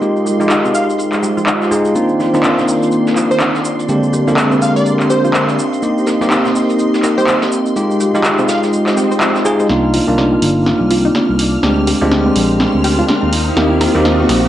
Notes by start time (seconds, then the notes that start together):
Already playing: D#4 G4 A#4 D#5 F5 C6
0.02 G#3 D#4 F4 G4, shaker
0.16 shaker
0.26 G4, shaker
0.40 G#3 D#4 F4 G4, closed hi-hat, shaker
0.48 D#4 C5, clap, shaker
0.65 C4, shaker
0.75 F5, shaker
0.90 G5, closed hi-hat, shaker
0.98 shaker
1.13 clap, closed hi-hat, shaker
1.23 G4, shaker
1.37 F4, shaker
1.47 D#4, clap, shaker
1.61 snare, shaker
1.71 G#3 D#4 F4 G#4, shaker
1.85 closed hi-hat, shaker
1.95 D#3 A#3 C4 D4 D#4 F4 C5 D5 C6, shaker
2.09 shaker
2.20 F4, snare, shaker
2.33 A#3 C4 D4 D#4 F4, snare, shaker
2.39 G4
2.43 D4, clap, open hi-hat, shaker
2.58 C4, snare, shaker
2.68 shaker
2.83 D5, closed hi-hat, shaker
2.92 shaker
3.07 snare, shaker
3.16 F4, clap, shaker
3.31 D#4 C5, shaker
3.40 D4, clap, shaker
3.55 snare, shaker
3.65 shaker
3.79 closed hi-hat, shaker
3.89 D3 G#3 A#3 C4 D4 G4 A#4, shaker
4.01 A#4, shaker
4.13 G4, shaker
4.27 D3 G#3 A#3 C4 D4 F4 G4 C6, closed hi-hat, shaker
4.37 D4, clap, shaker
4.52 C4, shaker
4.61 F5, shaker
4.66 F5
4.76 D5, closed hi-hat, shaker
4.85 shaker
5.00 clap, closed hi-hat, shaker
5.10 G4 C5, shaker
5.24 F4, shaker
5.34 D4, clap, shaker
5.48 snare, shaker
5.58 D#4 D#5, shaker
5.73 closed hi-hat, shaker
5.82 A#3 C4 D#4 G4, shaker
5.98 shaker
6.06 A#4, snare, shaker
6.21 A#3 C4 D#4 G4, snare, shaker
6.30 D#4, clap, open hi-hat, shaker
6.45 C4, snare, shaker
6.56 shaker
6.69 closed hi-hat, shaker
6.79 shaker
6.94 snare, shaker
7.03 A#4, snare, clap, shaker
7.18 G4 C5, shaker
7.27 D#4, clap, shaker
7.42 snare, shaker
7.52 shaker
7.66 shaker
7.76 G#3 D#4 F4 G4 D#5, shaker
7.91 shaker
7.96 G4 C5, shaker
8.01 shaker
8.14 G#3 D#4 F4 G4, closed hi-hat, shaker
8.24 D#4, clap, shaker
8.39 C4, shaker
8.48 F5, snare, shaker
8.63 G5, snare, shaker
8.73 swell, shaker
8.87 snare, clap, shaker
8.97 G4, snare, shaker
9.11 C5, shaker
9.21 F4, clap, shaker
9.36 snare, shaker
9.45 G#3 D#4 F4 G#4, shaker
9.60 C5, shaker
9.69 C2 A#3 C4 D4 D#4 F4 D5 A#5 F6, snare, riser
9.94 F4, open hi-hat
10.01 D6
10.08 C2 A#3 D4 D#4 F4
10.18 D4, snare
10.32 C4
10.42 G1, open hi-hat
10.66 snare
10.81 C2
10.91 F4, open hi-hat
11.05 D#4
11.15 D4, snare
11.29 C2
11.39 open hi-hat
11.63 D2 G#3 C4 D4 G4 A#4 G5 C6, snare
11.71 F5
11.87 G4, open hi-hat
12.01 D2 G#3 C4 D4 F4 G4
12.12 D4, snare
12.26 C4
12.36 A#1 C6, open hi-hat
12.60 snare
12.74 D2
12.84 G4, open hi-hat
12.99 F4
13.08 D4, snare
13.23 D#2
13.33 D#4 C5 D#6, open hi-hat
13.56 D#2 A#3 C4 D#4 G4, snare
13.81 A#4, snare, open hi-hat
13.95 D#2 A#3 C4 D#4 G4
14.05 D#4, snare
14.20 C4
14.29 A#1, snare, open hi-hat